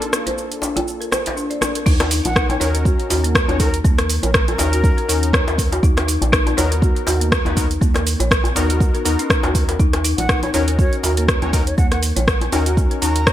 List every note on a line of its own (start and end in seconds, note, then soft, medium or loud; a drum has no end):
0.00 1.84 A#3 medium
0.00 1.84 D4 medium
0.00 1.84 F4 medium
0.00 1.84 A4 medium
0.00 0.12 A#4 medium
0.00 closed hi-hat soft
0.00 cabasa soft
0.13 cross-stick medium
0.13 cabasa medium
0.26 0.37 C5 medium
0.26 closed hi-hat medium
0.26 djembe tone medium
0.26 cabasa soft
0.38 cabasa soft
0.52 closed hi-hat soft
0.52 cabasa soft
0.62 0.75 D4 medium
0.62 djembe slap medium
0.62 cabasa medium
0.76 0.86 F4 medium
0.76 closed hi-hat medium
0.76 djembe tone medium
0.76 cabasa soft
0.88 cabasa soft
1.01 1.11 A#4 medium
1.01 closed hi-hat soft
1.01 cabasa soft
1.12 1.19 C5 medium
1.12 cross-stick medium
1.12 djembe tone medium
1.12 cabasa medium
1.26 closed hi-hat medium
1.26 djembe slap medium
1.26 cabasa soft
1.37 1.50 D4 medium
1.37 cabasa soft
1.50 1.60 D5 medium
1.50 closed hi-hat soft
1.50 cabasa soft
1.61 1.74 D4 medium
1.61 cross-stick medium
1.61 djembe tone medium
1.61 cabasa medium
1.75 1.85 A#4 medium
1.75 closed hi-hat medium
1.75 cabasa soft
1.86 2.21 D#2 loud
1.86 1.98 D#4 loud
1.86 kick loud
1.86 crash loud
1.86 cabasa medium
2.00 cross-stick medium
2.00 closed hi-hat soft
2.00 djembe slap medium
2.00 cabasa soft
2.11 2.18 D#4 medium
2.11 open hi-hat loud
2.11 cabasa medium
2.25 2.57 A#1 loud
2.25 2.47 F#5 medium
2.25 closed hi-hat medium
2.25 djembe tone medium
2.25 cabasa soft
2.36 2.48 D#4 loud
2.36 kick loud
2.36 cross-stick loud
2.36 cabasa medium
2.49 2.55 D#4 medium
2.49 2.57 C#5 medium
2.49 closed hi-hat soft
2.49 djembe tone loud
2.49 cabasa soft
2.60 2.95 D#2 medium
2.60 3.45 C#4 medium
2.60 3.45 D#4 medium
2.60 3.45 F#4 medium
2.60 3.45 A#4 medium
2.60 2.73 C#5 loud
2.60 2.69 C#5 medium
2.60 open hi-hat medium
2.60 djembe tone medium
2.60 cabasa medium
2.74 2.80 A#4 medium
2.74 closed hi-hat medium
2.74 cabasa soft
2.85 2.98 F#4 medium
2.85 kick loud
2.85 cabasa medium
3.00 closed hi-hat soft
3.00 cabasa soft
3.10 3.44 D#2 medium
3.10 3.17 F#4 medium
3.10 open hi-hat medium
3.10 djembe slap medium
3.10 cabasa medium
3.24 3.34 A#3 medium
3.24 closed hi-hat medium
3.24 cabasa soft
3.35 kick loud
3.35 cross-stick loud
3.35 cabasa medium
3.48 3.81 D#2 loud
3.48 3.57 C#4 medium
3.48 3.55 D#4 medium
3.48 3.57 D#4 medium
3.48 3.57 F#4 medium
3.48 3.57 C#5 medium
3.48 closed hi-hat soft
3.48 djembe tone medium
3.48 cabasa soft
3.59 3.70 C#4 medium
3.59 3.72 D#4 medium
3.59 3.70 D#4 medium
3.59 3.70 F#4 medium
3.59 3.77 A#4 medium
3.59 3.70 A#4 loud
3.59 kick medium
3.59 open hi-hat medium
3.59 cabasa medium
3.74 closed hi-hat medium
3.74 cabasa soft
3.84 4.19 D#2 loud
3.84 3.97 A#3 medium
3.84 kick loud
3.84 cabasa medium
3.98 4.09 A#4 medium
3.98 cross-stick medium
3.98 closed hi-hat soft
3.98 cabasa soft
4.10 open hi-hat medium
4.10 cabasa medium
4.23 4.56 A#1 loud
4.23 4.30 A#4 medium
4.23 4.34 C#5 medium
4.23 closed hi-hat medium
4.23 djembe tone medium
4.23 cabasa soft
4.34 4.43 A#4 medium
4.34 kick loud
4.34 cross-stick loud
4.34 cabasa medium
4.48 5.17 A#4 loud
4.48 closed hi-hat soft
4.48 djembe tone medium
4.48 cabasa soft
4.58 4.93 D#2 medium
4.58 5.06 C#4 medium
4.58 4.71 D#4 medium
4.58 5.06 D#4 medium
4.58 5.06 F#4 medium
4.58 5.06 A#4 medium
4.58 open hi-hat medium
4.58 djembe slap medium
4.58 djembe tone medium
4.58 cabasa loud
4.72 4.82 F#4 medium
4.72 closed hi-hat medium
4.72 cabasa soft
4.84 kick loud
4.84 cabasa medium
4.97 5.08 A#4 medium
4.97 closed hi-hat soft
4.97 cabasa soft
5.08 5.43 D#2 medium
5.08 5.82 C#4 medium
5.08 5.22 D#4 medium
5.08 5.82 D#4 medium
5.08 5.82 F#4 medium
5.08 5.82 A#4 medium
5.08 open hi-hat medium
5.08 cabasa medium
5.23 closed hi-hat medium
5.23 cabasa soft
5.33 5.46 C#5 loud
5.33 kick loud
5.33 cross-stick loud
5.33 cabasa medium
5.47 5.80 D#2 medium
5.47 5.57 A#4 medium
5.47 closed hi-hat soft
5.47 djembe slap loud
5.47 cabasa soft
5.58 kick medium
5.58 open hi-hat medium
5.58 cabasa loud
5.72 5.82 F#4 medium
5.72 closed hi-hat medium
5.72 djembe slap medium
5.72 cabasa soft
5.83 6.17 D#2 loud
5.83 5.95 D#4 loud
5.83 kick loud
5.83 cabasa medium
5.97 cross-stick medium
5.97 closed hi-hat soft
5.97 djembe slap medium
5.97 cabasa soft
6.08 6.15 D#4 medium
6.08 open hi-hat medium
6.08 cabasa loud
6.22 6.54 A#1 loud
6.22 closed hi-hat medium
6.22 djembe tone medium
6.22 cabasa soft
6.33 6.45 D#4 loud
6.33 kick loud
6.33 cross-stick loud
6.33 cabasa medium
6.46 6.52 D#4 medium
6.46 closed hi-hat soft
6.46 djembe tone medium
6.46 cabasa soft
6.57 6.92 D#2 medium
6.57 7.42 B3 medium
6.57 7.42 D#4 medium
6.57 7.42 F#4 medium
6.57 7.42 A#4 medium
6.57 6.70 C#5 loud
6.57 open hi-hat medium
6.57 djembe tone medium
6.57 cabasa loud
6.71 6.77 A#4 medium
6.71 closed hi-hat medium
6.71 cabasa soft
6.82 6.95 F#4 medium
6.82 kick loud
6.82 cabasa medium
6.96 closed hi-hat soft
6.96 cabasa soft
7.07 7.41 D#2 medium
7.07 7.14 F#4 medium
7.07 open hi-hat medium
7.07 djembe slap medium
7.07 cabasa loud
7.20 7.30 A#3 medium
7.20 closed hi-hat medium
7.20 cabasa soft
7.32 kick loud
7.32 cross-stick loud
7.32 cabasa medium
7.45 7.78 D#2 loud
7.45 7.54 B3 medium
7.45 7.51 D#4 medium
7.45 7.54 D#4 medium
7.45 7.54 F#4 medium
7.45 7.54 B4 medium
7.45 closed hi-hat soft
7.45 djembe tone loud
7.45 cabasa soft
7.56 7.66 B3 medium
7.56 7.69 D#4 medium
7.56 7.66 D#4 medium
7.56 7.66 F#4 medium
7.56 7.66 A#4 loud
7.56 kick medium
7.56 open hi-hat medium
7.56 cabasa loud
7.71 closed hi-hat medium
7.71 cabasa soft
7.81 8.16 D#2 loud
7.81 7.94 A#3 medium
7.81 kick loud
7.81 cabasa medium
7.94 8.06 A#4 medium
7.94 cross-stick medium
7.94 closed hi-hat soft
7.94 djembe slap medium
7.94 cabasa soft
8.07 open hi-hat medium
8.07 cabasa loud
8.20 8.52 A#1 loud
8.20 8.30 C#5 medium
8.20 closed hi-hat medium
8.20 djembe tone medium
8.20 cabasa soft
8.31 kick loud
8.31 cross-stick loud
8.31 cabasa medium
8.44 closed hi-hat soft
8.44 djembe tone loud
8.44 cabasa soft
8.56 8.90 D#2 medium
8.56 9.03 B3 medium
8.56 9.03 D#4 medium
8.56 8.68 D#4 medium
8.56 9.03 F#4 medium
8.56 9.03 A#4 medium
8.56 open hi-hat medium
8.56 djembe slap medium
8.56 djembe tone medium
8.56 cabasa loud
8.70 8.79 F#4 medium
8.70 closed hi-hat medium
8.70 cabasa soft
8.80 kick loud
8.80 cabasa medium
8.94 9.05 A#4 medium
8.94 closed hi-hat soft
8.94 cabasa soft
9.05 9.16 D#2 loud
9.05 9.78 B3 medium
9.05 9.17 D#4 medium
9.05 9.78 D#4 medium
9.05 9.78 F#4 medium
9.05 9.78 A#4 medium
9.05 open hi-hat medium
9.05 cabasa medium
9.19 9.29 C#4 medium
9.19 closed hi-hat medium
9.19 cabasa soft
9.30 9.38 D#4 medium
9.30 kick loud
9.30 cross-stick loud
9.30 cabasa medium
9.43 9.76 D#2 medium
9.43 9.54 F#4 medium
9.43 closed hi-hat soft
9.43 djembe slap loud
9.43 cabasa soft
9.55 kick medium
9.55 open hi-hat medium
9.55 cabasa loud
9.68 9.79 A#4 loud
9.68 closed hi-hat medium
9.68 djembe slap medium
9.68 cabasa soft
9.80 10.14 D#2 loud
9.80 9.92 D#4 loud
9.80 kick loud
9.80 cabasa medium
9.93 cross-stick medium
9.93 closed hi-hat soft
9.93 djembe slap medium
9.93 cabasa soft
10.04 10.12 D#4 medium
10.04 open hi-hat medium
10.04 cabasa medium
10.18 10.50 A#1 loud
10.18 10.40 F#5 medium
10.18 closed hi-hat medium
10.18 djembe tone medium
10.18 cabasa soft
10.29 10.42 D#4 loud
10.29 kick loud
10.29 cross-stick loud
10.29 cabasa medium
10.43 10.49 D#4 medium
10.43 10.50 C#5 medium
10.43 closed hi-hat soft
10.43 djembe tone medium
10.43 cabasa soft
10.53 10.88 D#2 medium
10.53 11.39 C#4 medium
10.53 11.39 D#4 medium
10.53 11.39 F#4 medium
10.53 11.39 A#4 medium
10.53 10.62 C#5 medium
10.53 10.66 C#5 loud
10.53 open hi-hat medium
10.53 djembe tone medium
10.53 cabasa medium
10.68 10.74 A#4 medium
10.68 closed hi-hat medium
10.68 cabasa soft
10.78 10.92 F#4 medium
10.78 10.96 C#5 medium
10.78 kick loud
10.78 cabasa medium
10.93 closed hi-hat soft
10.93 cabasa soft
11.03 11.38 D#2 medium
11.03 11.11 F#4 medium
11.03 11.12 A#4 medium
11.03 open hi-hat medium
11.03 djembe slap medium
11.03 cabasa medium
11.17 11.27 A#3 medium
11.17 11.24 A#4 medium
11.17 closed hi-hat medium
11.17 cabasa soft
11.28 kick loud
11.28 cross-stick loud
11.28 cabasa medium
11.42 11.74 D#2 medium
11.42 11.51 C#4 medium
11.42 11.48 D#4 medium
11.42 11.51 D#4 medium
11.42 11.51 F#4 medium
11.42 11.51 C#5 medium
11.42 closed hi-hat soft
11.42 djembe tone medium
11.42 cabasa soft
11.53 11.63 C#4 medium
11.53 11.65 D#4 medium
11.53 11.63 D#4 medium
11.53 11.63 F#4 medium
11.53 11.63 A#4 loud
11.53 kick medium
11.53 open hi-hat medium
11.53 cabasa loud
11.66 11.76 C#5 medium
11.66 closed hi-hat medium
11.66 cabasa soft
11.78 12.12 D#2 loud
11.78 11.90 A#3 medium
11.78 11.87 F#5 medium
11.78 kick loud
11.78 cabasa soft
11.91 12.02 A#4 medium
11.91 11.99 F#5 medium
11.91 cross-stick medium
11.91 closed hi-hat soft
11.91 cabasa soft
12.03 open hi-hat medium
12.03 cabasa medium
12.16 12.49 A#1 loud
12.16 12.27 C#5 medium
12.16 closed hi-hat medium
12.16 djembe tone medium
12.16 cabasa soft
12.28 kick loud
12.28 cross-stick loud
12.28 cabasa medium
12.41 closed hi-hat soft
12.41 djembe tone medium
12.41 cabasa soft
12.52 12.87 D#2 medium
12.52 12.99 C#4 medium
12.52 12.65 D#4 medium
12.52 12.99 D#4 medium
12.52 12.99 F#4 medium
12.52 12.99 A#4 medium
12.52 open hi-hat medium
12.52 djembe slap medium
12.52 djembe tone medium
12.52 cabasa medium
12.66 12.76 F#4 medium
12.66 closed hi-hat medium
12.66 cabasa soft
12.77 kick loud
12.77 cabasa soft
12.91 13.01 A#4 medium
12.91 closed hi-hat soft
12.91 cabasa soft
13.02 13.33 D#2 medium
13.02 13.33 C#4 medium
13.02 13.15 D#4 medium
13.02 13.33 D#4 medium
13.02 13.33 F#4 medium
13.02 13.33 A#4 medium
13.02 13.33 A#5 loud
13.02 open hi-hat medium
13.02 cabasa medium
13.16 closed hi-hat medium
13.16 cabasa soft
13.27 13.33 C#5 loud
13.27 kick loud
13.27 cross-stick loud
13.27 cabasa soft